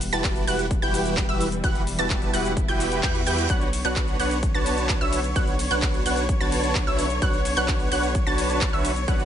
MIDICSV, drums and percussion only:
0, 0, Header, 1, 2, 480
1, 0, Start_track
1, 0, Key_signature, 2, "minor"
1, 0, Tempo, 465116
1, 1690, Time_signature, 4, 2, 24, 8
1, 9546, End_track
2, 0, Start_track
2, 0, Title_t, "Drums"
2, 10, Note_on_c, 9, 46, 96
2, 16, Note_on_c, 9, 82, 84
2, 113, Note_off_c, 9, 46, 0
2, 119, Note_off_c, 9, 82, 0
2, 130, Note_on_c, 9, 42, 53
2, 136, Note_on_c, 9, 82, 35
2, 233, Note_off_c, 9, 42, 0
2, 239, Note_off_c, 9, 82, 0
2, 249, Note_on_c, 9, 39, 115
2, 250, Note_on_c, 9, 36, 116
2, 250, Note_on_c, 9, 42, 80
2, 256, Note_on_c, 9, 82, 46
2, 352, Note_off_c, 9, 39, 0
2, 353, Note_off_c, 9, 42, 0
2, 354, Note_off_c, 9, 36, 0
2, 360, Note_off_c, 9, 82, 0
2, 370, Note_on_c, 9, 42, 37
2, 376, Note_on_c, 9, 82, 24
2, 473, Note_off_c, 9, 42, 0
2, 479, Note_off_c, 9, 82, 0
2, 490, Note_on_c, 9, 46, 88
2, 496, Note_on_c, 9, 82, 86
2, 593, Note_off_c, 9, 46, 0
2, 599, Note_off_c, 9, 82, 0
2, 610, Note_on_c, 9, 42, 55
2, 617, Note_on_c, 9, 82, 37
2, 714, Note_off_c, 9, 42, 0
2, 720, Note_off_c, 9, 82, 0
2, 730, Note_on_c, 9, 36, 115
2, 730, Note_on_c, 9, 42, 84
2, 737, Note_on_c, 9, 82, 48
2, 834, Note_off_c, 9, 36, 0
2, 834, Note_off_c, 9, 42, 0
2, 840, Note_off_c, 9, 82, 0
2, 856, Note_on_c, 9, 82, 24
2, 959, Note_off_c, 9, 82, 0
2, 970, Note_on_c, 9, 46, 101
2, 976, Note_on_c, 9, 82, 84
2, 1073, Note_off_c, 9, 46, 0
2, 1080, Note_off_c, 9, 82, 0
2, 1090, Note_on_c, 9, 42, 57
2, 1097, Note_on_c, 9, 82, 35
2, 1194, Note_off_c, 9, 42, 0
2, 1200, Note_off_c, 9, 82, 0
2, 1209, Note_on_c, 9, 39, 117
2, 1210, Note_on_c, 9, 36, 112
2, 1210, Note_on_c, 9, 42, 82
2, 1216, Note_on_c, 9, 82, 49
2, 1312, Note_off_c, 9, 39, 0
2, 1313, Note_off_c, 9, 36, 0
2, 1313, Note_off_c, 9, 42, 0
2, 1320, Note_off_c, 9, 82, 0
2, 1337, Note_on_c, 9, 82, 24
2, 1440, Note_off_c, 9, 82, 0
2, 1450, Note_on_c, 9, 46, 91
2, 1456, Note_on_c, 9, 82, 86
2, 1553, Note_off_c, 9, 46, 0
2, 1560, Note_off_c, 9, 82, 0
2, 1570, Note_on_c, 9, 42, 56
2, 1577, Note_on_c, 9, 82, 35
2, 1674, Note_off_c, 9, 42, 0
2, 1680, Note_off_c, 9, 82, 0
2, 1690, Note_on_c, 9, 36, 113
2, 1690, Note_on_c, 9, 42, 84
2, 1697, Note_on_c, 9, 82, 46
2, 1793, Note_off_c, 9, 36, 0
2, 1794, Note_off_c, 9, 42, 0
2, 1800, Note_off_c, 9, 82, 0
2, 1810, Note_on_c, 9, 42, 40
2, 1816, Note_on_c, 9, 82, 24
2, 1913, Note_off_c, 9, 42, 0
2, 1920, Note_off_c, 9, 82, 0
2, 1931, Note_on_c, 9, 46, 103
2, 1937, Note_on_c, 9, 82, 81
2, 2034, Note_off_c, 9, 46, 0
2, 2040, Note_off_c, 9, 82, 0
2, 2051, Note_on_c, 9, 42, 54
2, 2057, Note_on_c, 9, 82, 34
2, 2154, Note_off_c, 9, 42, 0
2, 2160, Note_off_c, 9, 82, 0
2, 2169, Note_on_c, 9, 39, 119
2, 2170, Note_on_c, 9, 36, 112
2, 2171, Note_on_c, 9, 42, 81
2, 2177, Note_on_c, 9, 82, 46
2, 2273, Note_off_c, 9, 36, 0
2, 2273, Note_off_c, 9, 39, 0
2, 2274, Note_off_c, 9, 42, 0
2, 2280, Note_off_c, 9, 82, 0
2, 2290, Note_on_c, 9, 42, 39
2, 2297, Note_on_c, 9, 82, 23
2, 2394, Note_off_c, 9, 42, 0
2, 2400, Note_off_c, 9, 82, 0
2, 2410, Note_on_c, 9, 46, 92
2, 2417, Note_on_c, 9, 82, 82
2, 2514, Note_off_c, 9, 46, 0
2, 2520, Note_off_c, 9, 82, 0
2, 2531, Note_on_c, 9, 42, 57
2, 2537, Note_on_c, 9, 82, 36
2, 2634, Note_off_c, 9, 42, 0
2, 2640, Note_off_c, 9, 82, 0
2, 2650, Note_on_c, 9, 36, 113
2, 2651, Note_on_c, 9, 42, 86
2, 2657, Note_on_c, 9, 82, 47
2, 2753, Note_off_c, 9, 36, 0
2, 2754, Note_off_c, 9, 42, 0
2, 2760, Note_off_c, 9, 82, 0
2, 2771, Note_on_c, 9, 42, 41
2, 2777, Note_on_c, 9, 82, 24
2, 2874, Note_off_c, 9, 42, 0
2, 2880, Note_off_c, 9, 82, 0
2, 2891, Note_on_c, 9, 46, 105
2, 2897, Note_on_c, 9, 82, 84
2, 2994, Note_off_c, 9, 46, 0
2, 3000, Note_off_c, 9, 82, 0
2, 3011, Note_on_c, 9, 42, 58
2, 3017, Note_on_c, 9, 82, 36
2, 3114, Note_off_c, 9, 42, 0
2, 3120, Note_off_c, 9, 82, 0
2, 3130, Note_on_c, 9, 36, 118
2, 3130, Note_on_c, 9, 39, 121
2, 3131, Note_on_c, 9, 42, 88
2, 3137, Note_on_c, 9, 82, 46
2, 3233, Note_off_c, 9, 36, 0
2, 3233, Note_off_c, 9, 39, 0
2, 3234, Note_off_c, 9, 42, 0
2, 3240, Note_off_c, 9, 82, 0
2, 3251, Note_on_c, 9, 42, 38
2, 3257, Note_on_c, 9, 82, 23
2, 3354, Note_off_c, 9, 42, 0
2, 3360, Note_off_c, 9, 82, 0
2, 3370, Note_on_c, 9, 46, 89
2, 3377, Note_on_c, 9, 82, 85
2, 3474, Note_off_c, 9, 46, 0
2, 3480, Note_off_c, 9, 82, 0
2, 3491, Note_on_c, 9, 42, 56
2, 3497, Note_on_c, 9, 82, 35
2, 3594, Note_off_c, 9, 42, 0
2, 3600, Note_off_c, 9, 82, 0
2, 3610, Note_on_c, 9, 36, 124
2, 3611, Note_on_c, 9, 42, 82
2, 3617, Note_on_c, 9, 82, 45
2, 3713, Note_off_c, 9, 36, 0
2, 3714, Note_off_c, 9, 42, 0
2, 3720, Note_off_c, 9, 82, 0
2, 3730, Note_on_c, 9, 42, 39
2, 3736, Note_on_c, 9, 82, 23
2, 3833, Note_off_c, 9, 42, 0
2, 3840, Note_off_c, 9, 82, 0
2, 3850, Note_on_c, 9, 46, 104
2, 3850, Note_on_c, 9, 51, 75
2, 3856, Note_on_c, 9, 82, 79
2, 3953, Note_off_c, 9, 46, 0
2, 3953, Note_off_c, 9, 51, 0
2, 3960, Note_off_c, 9, 82, 0
2, 3970, Note_on_c, 9, 42, 53
2, 3976, Note_on_c, 9, 82, 33
2, 4073, Note_off_c, 9, 42, 0
2, 4079, Note_off_c, 9, 82, 0
2, 4088, Note_on_c, 9, 39, 124
2, 4090, Note_on_c, 9, 36, 121
2, 4090, Note_on_c, 9, 42, 82
2, 4096, Note_on_c, 9, 82, 43
2, 4192, Note_off_c, 9, 39, 0
2, 4193, Note_off_c, 9, 36, 0
2, 4193, Note_off_c, 9, 42, 0
2, 4199, Note_off_c, 9, 82, 0
2, 4210, Note_on_c, 9, 42, 37
2, 4216, Note_on_c, 9, 82, 23
2, 4313, Note_off_c, 9, 42, 0
2, 4319, Note_off_c, 9, 82, 0
2, 4330, Note_on_c, 9, 46, 93
2, 4330, Note_on_c, 9, 51, 77
2, 4336, Note_on_c, 9, 82, 78
2, 4433, Note_off_c, 9, 46, 0
2, 4433, Note_off_c, 9, 51, 0
2, 4439, Note_off_c, 9, 82, 0
2, 4450, Note_on_c, 9, 42, 57
2, 4456, Note_on_c, 9, 82, 34
2, 4553, Note_off_c, 9, 42, 0
2, 4559, Note_off_c, 9, 82, 0
2, 4569, Note_on_c, 9, 42, 86
2, 4570, Note_on_c, 9, 36, 123
2, 4576, Note_on_c, 9, 82, 46
2, 4673, Note_off_c, 9, 42, 0
2, 4674, Note_off_c, 9, 36, 0
2, 4679, Note_off_c, 9, 82, 0
2, 4696, Note_on_c, 9, 82, 23
2, 4799, Note_off_c, 9, 82, 0
2, 4809, Note_on_c, 9, 46, 108
2, 4809, Note_on_c, 9, 51, 75
2, 4816, Note_on_c, 9, 82, 79
2, 4913, Note_off_c, 9, 46, 0
2, 4913, Note_off_c, 9, 51, 0
2, 4919, Note_off_c, 9, 82, 0
2, 4930, Note_on_c, 9, 42, 56
2, 4936, Note_on_c, 9, 82, 35
2, 5033, Note_off_c, 9, 42, 0
2, 5039, Note_off_c, 9, 82, 0
2, 5048, Note_on_c, 9, 39, 125
2, 5049, Note_on_c, 9, 42, 85
2, 5051, Note_on_c, 9, 36, 121
2, 5056, Note_on_c, 9, 82, 45
2, 5151, Note_off_c, 9, 39, 0
2, 5153, Note_off_c, 9, 42, 0
2, 5154, Note_off_c, 9, 36, 0
2, 5159, Note_off_c, 9, 82, 0
2, 5176, Note_on_c, 9, 82, 22
2, 5279, Note_off_c, 9, 82, 0
2, 5290, Note_on_c, 9, 46, 96
2, 5290, Note_on_c, 9, 51, 76
2, 5296, Note_on_c, 9, 82, 79
2, 5393, Note_off_c, 9, 46, 0
2, 5393, Note_off_c, 9, 51, 0
2, 5399, Note_off_c, 9, 82, 0
2, 5410, Note_on_c, 9, 42, 55
2, 5416, Note_on_c, 9, 82, 33
2, 5513, Note_off_c, 9, 42, 0
2, 5519, Note_off_c, 9, 82, 0
2, 5530, Note_on_c, 9, 42, 81
2, 5531, Note_on_c, 9, 36, 124
2, 5536, Note_on_c, 9, 82, 43
2, 5633, Note_off_c, 9, 42, 0
2, 5634, Note_off_c, 9, 36, 0
2, 5639, Note_off_c, 9, 82, 0
2, 5651, Note_on_c, 9, 42, 38
2, 5657, Note_on_c, 9, 82, 22
2, 5754, Note_off_c, 9, 42, 0
2, 5760, Note_off_c, 9, 82, 0
2, 5771, Note_on_c, 9, 46, 111
2, 5771, Note_on_c, 9, 51, 72
2, 5777, Note_on_c, 9, 82, 75
2, 5874, Note_off_c, 9, 46, 0
2, 5874, Note_off_c, 9, 51, 0
2, 5880, Note_off_c, 9, 82, 0
2, 5891, Note_on_c, 9, 42, 54
2, 5897, Note_on_c, 9, 82, 33
2, 5994, Note_off_c, 9, 42, 0
2, 6000, Note_off_c, 9, 82, 0
2, 6009, Note_on_c, 9, 39, 127
2, 6011, Note_on_c, 9, 36, 125
2, 6011, Note_on_c, 9, 42, 81
2, 6017, Note_on_c, 9, 82, 43
2, 6113, Note_off_c, 9, 39, 0
2, 6114, Note_off_c, 9, 36, 0
2, 6114, Note_off_c, 9, 42, 0
2, 6120, Note_off_c, 9, 82, 0
2, 6131, Note_on_c, 9, 42, 37
2, 6137, Note_on_c, 9, 82, 22
2, 6234, Note_off_c, 9, 42, 0
2, 6240, Note_off_c, 9, 82, 0
2, 6251, Note_on_c, 9, 46, 97
2, 6251, Note_on_c, 9, 51, 78
2, 6257, Note_on_c, 9, 82, 79
2, 6354, Note_off_c, 9, 46, 0
2, 6354, Note_off_c, 9, 51, 0
2, 6360, Note_off_c, 9, 82, 0
2, 6371, Note_on_c, 9, 42, 57
2, 6377, Note_on_c, 9, 82, 33
2, 6474, Note_off_c, 9, 42, 0
2, 6480, Note_off_c, 9, 82, 0
2, 6491, Note_on_c, 9, 36, 125
2, 6491, Note_on_c, 9, 42, 83
2, 6497, Note_on_c, 9, 82, 42
2, 6594, Note_off_c, 9, 36, 0
2, 6594, Note_off_c, 9, 42, 0
2, 6600, Note_off_c, 9, 82, 0
2, 6617, Note_on_c, 9, 82, 22
2, 6720, Note_off_c, 9, 82, 0
2, 6731, Note_on_c, 9, 46, 112
2, 6731, Note_on_c, 9, 51, 78
2, 6737, Note_on_c, 9, 82, 78
2, 6834, Note_off_c, 9, 46, 0
2, 6834, Note_off_c, 9, 51, 0
2, 6840, Note_off_c, 9, 82, 0
2, 6851, Note_on_c, 9, 42, 54
2, 6857, Note_on_c, 9, 82, 33
2, 6954, Note_off_c, 9, 42, 0
2, 6960, Note_off_c, 9, 82, 0
2, 6969, Note_on_c, 9, 39, 127
2, 6970, Note_on_c, 9, 42, 83
2, 6971, Note_on_c, 9, 36, 122
2, 6976, Note_on_c, 9, 82, 44
2, 7072, Note_off_c, 9, 39, 0
2, 7073, Note_off_c, 9, 42, 0
2, 7074, Note_off_c, 9, 36, 0
2, 7080, Note_off_c, 9, 82, 0
2, 7096, Note_on_c, 9, 82, 22
2, 7199, Note_off_c, 9, 82, 0
2, 7210, Note_on_c, 9, 46, 100
2, 7210, Note_on_c, 9, 51, 77
2, 7216, Note_on_c, 9, 82, 76
2, 7313, Note_off_c, 9, 46, 0
2, 7313, Note_off_c, 9, 51, 0
2, 7319, Note_off_c, 9, 82, 0
2, 7330, Note_on_c, 9, 42, 55
2, 7336, Note_on_c, 9, 82, 33
2, 7434, Note_off_c, 9, 42, 0
2, 7440, Note_off_c, 9, 82, 0
2, 7450, Note_on_c, 9, 42, 78
2, 7451, Note_on_c, 9, 36, 126
2, 7456, Note_on_c, 9, 82, 42
2, 7553, Note_off_c, 9, 42, 0
2, 7554, Note_off_c, 9, 36, 0
2, 7559, Note_off_c, 9, 82, 0
2, 7571, Note_on_c, 9, 42, 37
2, 7577, Note_on_c, 9, 82, 21
2, 7674, Note_off_c, 9, 42, 0
2, 7680, Note_off_c, 9, 82, 0
2, 7690, Note_on_c, 9, 46, 109
2, 7690, Note_on_c, 9, 51, 77
2, 7696, Note_on_c, 9, 82, 74
2, 7793, Note_off_c, 9, 46, 0
2, 7793, Note_off_c, 9, 51, 0
2, 7800, Note_off_c, 9, 82, 0
2, 7810, Note_on_c, 9, 42, 52
2, 7816, Note_on_c, 9, 82, 31
2, 7913, Note_off_c, 9, 42, 0
2, 7919, Note_off_c, 9, 82, 0
2, 7928, Note_on_c, 9, 39, 120
2, 7930, Note_on_c, 9, 42, 75
2, 7931, Note_on_c, 9, 36, 127
2, 7936, Note_on_c, 9, 82, 41
2, 8032, Note_off_c, 9, 39, 0
2, 8033, Note_off_c, 9, 42, 0
2, 8034, Note_off_c, 9, 36, 0
2, 8039, Note_off_c, 9, 82, 0
2, 8050, Note_on_c, 9, 42, 36
2, 8056, Note_on_c, 9, 82, 22
2, 8153, Note_off_c, 9, 42, 0
2, 8159, Note_off_c, 9, 82, 0
2, 8170, Note_on_c, 9, 46, 96
2, 8170, Note_on_c, 9, 51, 80
2, 8176, Note_on_c, 9, 82, 75
2, 8273, Note_off_c, 9, 46, 0
2, 8273, Note_off_c, 9, 51, 0
2, 8279, Note_off_c, 9, 82, 0
2, 8290, Note_on_c, 9, 42, 52
2, 8296, Note_on_c, 9, 82, 33
2, 8393, Note_off_c, 9, 42, 0
2, 8399, Note_off_c, 9, 82, 0
2, 8410, Note_on_c, 9, 36, 123
2, 8410, Note_on_c, 9, 42, 78
2, 8416, Note_on_c, 9, 82, 43
2, 8513, Note_off_c, 9, 42, 0
2, 8514, Note_off_c, 9, 36, 0
2, 8519, Note_off_c, 9, 82, 0
2, 8536, Note_on_c, 9, 82, 22
2, 8639, Note_off_c, 9, 82, 0
2, 8650, Note_on_c, 9, 46, 111
2, 8650, Note_on_c, 9, 51, 76
2, 8656, Note_on_c, 9, 82, 77
2, 8753, Note_off_c, 9, 46, 0
2, 8753, Note_off_c, 9, 51, 0
2, 8759, Note_off_c, 9, 82, 0
2, 8770, Note_on_c, 9, 42, 53
2, 8776, Note_on_c, 9, 82, 33
2, 8873, Note_off_c, 9, 42, 0
2, 8879, Note_off_c, 9, 82, 0
2, 8888, Note_on_c, 9, 39, 125
2, 8890, Note_on_c, 9, 36, 126
2, 8890, Note_on_c, 9, 42, 81
2, 8896, Note_on_c, 9, 82, 43
2, 8992, Note_off_c, 9, 39, 0
2, 8993, Note_off_c, 9, 36, 0
2, 8993, Note_off_c, 9, 42, 0
2, 8999, Note_off_c, 9, 82, 0
2, 9016, Note_on_c, 9, 82, 22
2, 9119, Note_off_c, 9, 82, 0
2, 9130, Note_on_c, 9, 46, 101
2, 9130, Note_on_c, 9, 51, 80
2, 9136, Note_on_c, 9, 82, 77
2, 9233, Note_off_c, 9, 46, 0
2, 9233, Note_off_c, 9, 51, 0
2, 9239, Note_off_c, 9, 82, 0
2, 9250, Note_on_c, 9, 42, 51
2, 9256, Note_on_c, 9, 82, 33
2, 9353, Note_off_c, 9, 42, 0
2, 9360, Note_off_c, 9, 82, 0
2, 9370, Note_on_c, 9, 36, 123
2, 9370, Note_on_c, 9, 42, 77
2, 9376, Note_on_c, 9, 82, 43
2, 9473, Note_off_c, 9, 36, 0
2, 9473, Note_off_c, 9, 42, 0
2, 9479, Note_off_c, 9, 82, 0
2, 9490, Note_on_c, 9, 42, 36
2, 9496, Note_on_c, 9, 82, 22
2, 9546, Note_off_c, 9, 42, 0
2, 9546, Note_off_c, 9, 82, 0
2, 9546, End_track
0, 0, End_of_file